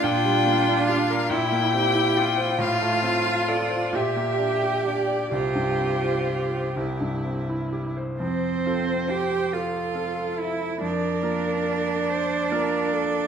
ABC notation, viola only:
X:1
M:6/8
L:1/8
Q:3/8=46
K:F
V:1 name="Viola"
D3 E3 | F3 G3 | F3 E3 | c3 A3 |
B3 c B A |]